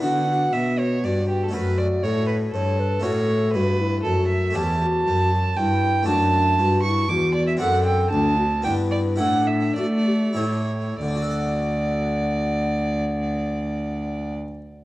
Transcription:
X:1
M:3/4
L:1/16
Q:1/4=117
K:F#phr
V:1 name="Violin"
f4 e2 c2 d2 G A | B2 d2 c2 B2 A4 | c4 B4 A2 e2 | [K:D] a8 g4 |
a6 c'2 d'2 d e | f2 g2 a4 g2 d2 | f2 e2 d4 c4 | d12- |
d12 |]
V:2 name="Flute"
D2 F6 F4 | F4 A4 c2 B2 | A4 F2 E2 F4 | [K:D] G2 F4 z2 E4 |
D4 F2 E2 F4 | A4 D2 F2 E4 | D4 F2 G2 E2 z2 | f12- |
f12 |]
V:3 name="Harpsichord"
[B,DF]12 | [A,CF]12 | [A,CF]12 | [K:D] [A,CG]12 |
[A,DF]12 | [=CDA]8 [B,DB]4 | [EGA]8 [EGA]4 | [D,DFAf]12- |
[D,DFAf]12 |]
V:4 name="Harpsichord" clef=bass
D,4 B,,4 G,,4 | F,,4 A,,4 G,,4 | A,,4 G,,4 F,,4 | [K:D] E,,4 F,,4 G,,4 |
F,,4 G,,4 E,,4 | F,,4 D,,4 G,,4 | A,,4 A,4 A,,4 | z12 |
z12 |]
V:5 name="Cello" clef=bass
D,4 B,,4 G,,4 | F,,4 A,,4 G,,4 | A,,4 G,,4 F,,4 | [K:D] E,,4 F,,4 G,,4 |
F,,4 G,,4 E,,4 | F,,4 D,,4 G,,4 | A,,4 A,4 A,,4 | D,,12- |
D,,12 |]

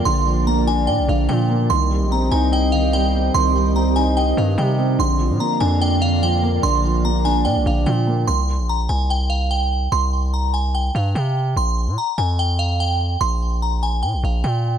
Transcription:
X:1
M:4/4
L:1/16
Q:1/4=146
K:Cm
V:1 name="Synth bell"
c'4 b2 a2 g2 f2 g4 | c'4 b2 a2 g2 f2 g4 | c'4 b2 a2 g2 f2 g4 | c'4 b2 a2 g2 f2 g4 |
c'4 b2 a2 g2 f2 g4 | c'4 b2 a2 g2 f2 g4 | c'4 b2 a2 g2 f2 g4 | c'4 b2 a2 g2 f2 g4 |
c'4 b2 a2 g2 f2 g4 |]
V:2 name="Ambient pad"
[B,Fd]16 | [CGe]16- | [CGe]16 | [B,Fd]16- |
[B,Fd]16 | z16 | z16 | z16 |
z16 |]
V:3 name="Felt piano"
[D,F,B,d]2 F,2 B,2 D2 d2 D,2 F,2 B,2 | E,2 G,2 C2 E2 e2 E,2 G,2 C2 | E,2 G,2 C2 E2 e2 E,2 G,2 C2 | D,2 F,2 B,2 D2 d2 D,2 F,2 B,2 |
D,2 F,2 B,2 D2 d2 D,2 F,2 B,2 | z16 | z16 | z16 |
z16 |]
V:4 name="808-style bass" clef=bass
B,,,8 B,, B,,, B,,,2 B,,4 | C,,3 B,,,3 C,,8- C,,2 | C,,8- C,,2 G,,2 C,4 | B,,,3 B,, z2 F,,8- F,,2 |
B,,,8 B,, B,,, B,,,2 B,,4 | C,,3 B,,,3 C,,8- C,,2 | C,,8- C,,2 G,,2 C,4 | B,,,3 B,, z2 F,,8- F,,2 |
B,,,8 B,, B,,, B,,,2 B,,4 |]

